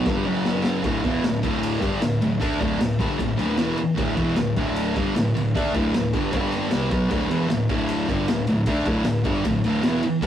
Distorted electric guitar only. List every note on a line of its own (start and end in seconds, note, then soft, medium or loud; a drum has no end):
0.06 0.25 G2 medium
0.06 0.26 D3 medium
0.06 0.26 G3 loud
0.25 0.82 F#2 medium
0.25 0.84 C#3 medium
0.25 0.84 F#3 medium
0.82 1.02 D2 medium
0.82 1.03 A2 medium
0.82 1.03 D3 loud
1.02 1.22 E2 medium
1.02 1.22 B2 medium
1.02 1.23 E3 medium
1.23 1.39 D2 medium
1.23 1.39 A2 medium
1.42 1.78 D2 medium
1.42 1.79 A2 loud
1.42 1.78 D3 loud
1.79 2.00 G2 medium
1.79 2.00 D3 medium
1.79 2.00 G3 medium
2.01 2.17 D2 medium
2.01 2.17 A2 medium
2.21 2.37 D2 medium
2.21 2.37 A2 medium
2.40 2.59 D3 medium
2.40 2.60 A3 loud
2.40 2.60 D4 loud
2.59 2.77 D2 medium
2.59 2.77 A2 medium
2.59 2.80 D3 medium
2.78 2.95 D2 medium
2.78 2.95 A2 medium
2.99 3.18 G2 loud
2.99 3.18 D3 medium
2.99 3.19 G3 medium
3.19 3.35 D2 medium
3.19 3.35 A2 medium
3.37 3.56 D2 medium
3.37 3.57 A2 medium
3.37 3.58 D3 medium
3.57 3.77 E2 medium
3.57 3.77 B2 medium
3.57 3.77 E3 loud
3.77 muted distorted electric guitar stroke medium
3.95 4.15 D2 medium
3.95 4.16 A2 medium
3.95 4.17 D3 loud
4.16 4.35 E2 medium
4.16 4.36 B2 medium
4.16 4.36 E3 loud
4.37 4.53 D2 medium
4.37 4.53 A2 medium
4.56 4.95 D2 medium
4.56 4.95 A2 medium
4.56 4.95 D3 loud
4.96 5.14 G2 medium
4.96 5.15 D3 medium
4.96 5.16 G3 medium
5.15 5.31 D2 medium
5.15 5.31 A2 medium
5.34 5.50 D2 medium
5.34 5.50 A2 medium
5.55 5.73 D3 medium
5.55 5.74 A3 loud
5.55 5.74 D4 loud
5.74 5.93 D2 medium
5.74 5.93 A2 medium
5.74 5.93 D3 loud
5.95 6.10 D2 medium
5.95 6.10 A2 medium
6.13 6.31 G2 medium
6.13 6.31 D3 loud
6.13 6.33 G3 medium
6.32 6.69 G2 medium
6.32 6.71 D3 medium
6.32 6.70 G3 medium
6.70 6.89 C3 medium
6.70 6.90 G3 medium
6.70 6.90 C4 medium
6.90 7.09 B2 medium
6.90 7.10 F#3 medium
6.90 7.10 B3 medium
7.09 7.27 D2 loud
7.09 7.29 A2 loud
7.09 7.30 D3 loud
7.28 7.48 E2 medium
7.28 7.48 B2 medium
7.28 7.49 E3 loud
7.48 7.64 D2 medium
7.48 7.64 A2 medium
7.68 8.07 D2 medium
7.68 8.07 A2 loud
7.68 8.07 D3 loud
8.08 8.27 G2 medium
8.08 8.27 D3 medium
8.08 8.28 G3 loud
8.28 8.43 D2 medium
8.28 8.44 A2 medium
8.47 8.63 D2 medium
8.47 8.63 A2 medium
8.67 8.85 D3 medium
8.67 8.86 A3 medium
8.67 8.86 D4 loud
8.85 9.04 D2 medium
8.85 9.04 A2 medium
8.85 9.05 D3 loud
9.05 9.20 D2 medium
9.05 9.21 A2 medium
9.24 9.43 G2 loud
9.24 9.44 D3 medium
9.24 9.44 G3 loud
9.44 9.60 D2 medium
9.44 9.60 A2 medium
9.65 9.82 D2 medium
9.65 9.83 A2 medium
9.65 9.84 D3 loud
9.83 10.02 E2 medium
9.83 10.02 B2 medium
9.83 10.03 E3 loud
10.03 muted distorted electric guitar stroke medium
10.21 10.27 D2 medium
10.21 10.27 A2 loud
10.21 10.27 D3 loud